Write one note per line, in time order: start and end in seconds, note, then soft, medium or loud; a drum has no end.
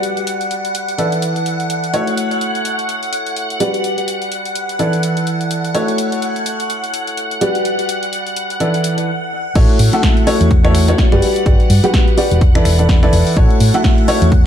0.00 0.96 G3 medium
0.00 0.96 F#4 medium
0.00 0.96 G4 medium
0.00 0.96 B4 medium
0.00 0.96 D5 medium
0.00 9.54 F#5 medium
0.00 closed hi-hat medium
0.17 closed hi-hat soft
0.27 closed hi-hat medium
0.41 closed hi-hat soft
0.51 closed hi-hat medium
0.65 closed hi-hat soft
0.75 closed hi-hat medium
0.89 closed hi-hat soft
0.98 1.91 E3 medium
0.98 1.91 E4 medium
0.98 1.91 A4 medium
0.98 1.91 B4 medium
0.98 1.91 D5 medium
0.98 closed hi-hat medium
1.12 closed hi-hat soft
1.22 closed hi-hat medium
1.36 closed hi-hat soft
1.46 closed hi-hat medium
1.60 closed hi-hat soft
1.70 closed hi-hat medium
1.84 closed hi-hat soft
1.94 3.58 A3 medium
1.94 3.58 E4 medium
1.94 3.58 F#4 medium
1.94 3.58 A4 medium
1.94 3.58 C#5 medium
1.94 closed hi-hat medium
2.07 closed hi-hat soft
2.17 closed hi-hat medium
2.31 closed hi-hat soft
2.41 closed hi-hat medium
2.55 closed hi-hat soft
2.65 closed hi-hat medium
2.79 closed hi-hat soft
2.89 closed hi-hat medium
3.03 closed hi-hat soft
3.13 closed hi-hat medium
3.27 closed hi-hat soft
3.36 closed hi-hat medium
3.50 closed hi-hat soft
3.60 4.77 G3 medium
3.60 4.77 F#4 medium
3.60 4.77 G4 medium
3.60 4.77 B4 medium
3.60 4.77 D5 medium
3.60 closed hi-hat medium
3.74 closed hi-hat soft
3.84 closed hi-hat medium
3.98 closed hi-hat soft
4.08 closed hi-hat medium
4.22 closed hi-hat soft
4.32 closed hi-hat medium
4.45 closed hi-hat soft
4.55 closed hi-hat medium
4.69 closed hi-hat soft
4.79 5.72 E3 medium
4.79 5.72 E4 medium
4.79 5.72 A4 medium
4.79 5.72 B4 medium
4.79 5.72 D5 medium
4.79 closed hi-hat medium
4.93 closed hi-hat soft
5.03 closed hi-hat medium
5.17 closed hi-hat soft
5.27 closed hi-hat medium
5.41 closed hi-hat soft
5.51 closed hi-hat medium
5.65 closed hi-hat soft
5.75 7.39 A3 medium
5.75 7.39 E4 medium
5.75 7.39 F#4 medium
5.75 7.39 A4 medium
5.75 7.39 C#5 medium
5.75 closed hi-hat medium
5.88 closed hi-hat soft
5.98 closed hi-hat medium
6.12 closed hi-hat soft
6.22 closed hi-hat medium
6.36 closed hi-hat soft
6.46 closed hi-hat medium
6.60 closed hi-hat soft
6.70 closed hi-hat medium
6.84 closed hi-hat soft
6.94 closed hi-hat medium
7.07 closed hi-hat soft
7.17 closed hi-hat medium
7.31 closed hi-hat soft
7.41 8.58 G3 medium
7.41 8.58 F#4 medium
7.41 8.58 G4 medium
7.41 8.58 B4 medium
7.41 8.58 D5 medium
7.41 closed hi-hat medium
7.55 closed hi-hat soft
7.65 closed hi-hat medium
7.79 closed hi-hat soft
7.89 closed hi-hat medium
8.03 closed hi-hat soft
8.13 closed hi-hat medium
8.27 closed hi-hat soft
8.36 closed hi-hat medium
8.50 closed hi-hat soft
8.60 9.08 E3 medium
8.60 9.08 E4 medium
8.60 9.08 A4 medium
8.60 9.08 B4 medium
8.60 9.08 D5 medium
8.60 closed hi-hat medium
8.74 closed hi-hat soft
8.84 closed hi-hat medium
8.98 closed hi-hat soft
9.55 9.65 A1 loud
9.55 9.90 A3 medium
9.55 9.90 E4 medium
9.55 9.90 F#4 medium
9.55 9.90 A4 medium
9.55 9.90 C#5 medium
9.55 14.46 F#5 medium
9.55 kick loud
9.55 closed hi-hat medium
9.55 crash loud
9.69 closed hi-hat soft
9.79 9.88 A2 loud
9.79 open hi-hat loud
9.93 10.25 A3 loud
9.93 10.25 E4 medium
9.93 10.25 F#4 medium
9.93 10.25 A4 medium
9.93 10.25 F#5 loud
9.93 closed hi-hat medium
10.03 kick loud
10.03 snare loud
10.03 closed hi-hat medium
10.17 closed hi-hat soft
10.27 10.47 A3 loud
10.27 10.47 E4 medium
10.27 10.47 F#4 medium
10.27 10.47 A4 medium
10.27 10.47 C#5 loud
10.27 open hi-hat loud
10.41 10.93 E2 loud
10.41 closed hi-hat medium
10.51 kick loud
10.51 closed hi-hat medium
10.65 10.85 A3 medium
10.65 10.85 E4 medium
10.65 10.85 F#4 medium
10.65 10.85 A4 medium
10.65 10.85 C#5 loud
10.65 finger snap medium
10.65 closed hi-hat soft
10.75 finger snap medium
10.75 open hi-hat loud
10.88 11.07 A3 medium
10.88 11.07 E4 medium
10.88 11.07 F#4 medium
10.88 11.07 A4 medium
10.88 11.07 C#5 medium
10.88 closed hi-hat medium
10.98 kick loud
10.98 snare loud
10.98 closed hi-hat medium
11.12 11.19 F#1 medium
11.12 11.44 G3 loud
11.12 11.44 F#4 medium
11.12 11.44 G4 medium
11.12 11.44 B4 medium
11.12 11.44 D5 loud
11.12 finger snap medium
11.12 closed hi-hat soft
11.22 open hi-hat loud
11.36 closed hi-hat medium
11.46 11.55 G1 loud
11.46 11.80 G3 medium
11.46 11.80 F#4 medium
11.46 11.80 G4 medium
11.46 11.80 B4 medium
11.46 11.80 D5 medium
11.46 kick loud
11.46 closed hi-hat medium
11.60 closed hi-hat soft
11.70 11.79 G2 loud
11.70 open hi-hat loud
11.84 12.15 G3 loud
11.84 12.15 F#4 medium
11.84 12.15 G4 medium
11.84 12.15 B4 medium
11.84 12.15 F#5 loud
11.84 closed hi-hat medium
11.94 kick loud
11.94 snare loud
11.94 closed hi-hat medium
12.08 closed hi-hat soft
12.18 12.38 F#4 loud
12.18 12.38 G4 medium
12.18 12.38 B4 medium
12.18 12.38 D5 loud
12.18 open hi-hat loud
12.31 12.60 E1 medium
12.31 closed hi-hat medium
12.41 kick loud
12.41 closed hi-hat medium
12.55 12.76 E3 medium
12.55 12.76 E4 medium
12.55 12.76 A4 medium
12.55 12.76 B4 medium
12.55 12.76 D5 loud
12.55 finger snap medium
12.55 closed hi-hat soft
12.65 13.07 E1 medium
12.65 finger snap medium
12.65 open hi-hat loud
12.79 12.98 E3 medium
12.79 12.98 E4 medium
12.79 12.98 A4 medium
12.79 12.98 B4 medium
12.79 12.98 D5 medium
12.79 closed hi-hat medium
12.89 kick loud
12.89 snare loud
12.89 closed hi-hat medium
13.03 13.34 E3 loud
13.03 13.34 E4 medium
13.03 13.34 A4 medium
13.03 13.34 B4 medium
13.03 13.34 D5 loud
13.03 finger snap medium
13.03 closed hi-hat soft
13.13 13.22 E1 medium
13.13 open hi-hat loud
13.27 open hi-hat medium
13.37 13.46 A1 loud
13.37 13.71 A3 medium
13.37 13.71 E4 medium
13.37 13.71 F#4 medium
13.37 13.71 A4 medium
13.37 13.71 C#5 medium
13.37 kick loud
13.37 closed hi-hat medium
13.50 closed hi-hat soft
13.60 13.69 A2 loud
13.60 open hi-hat loud
13.74 14.06 A3 loud
13.74 14.06 E4 medium
13.74 14.06 F#4 medium
13.74 14.06 A4 medium
13.74 14.06 F#5 loud
13.74 closed hi-hat medium
13.84 kick loud
13.84 snare loud
13.84 closed hi-hat medium
13.98 closed hi-hat soft
14.08 14.28 A3 loud
14.08 14.28 E4 medium
14.08 14.28 F#4 medium
14.08 14.28 A4 medium
14.08 14.28 C#5 loud
14.08 open hi-hat loud
14.22 14.46 E2 loud
14.22 closed hi-hat medium
14.32 kick loud
14.32 closed hi-hat soft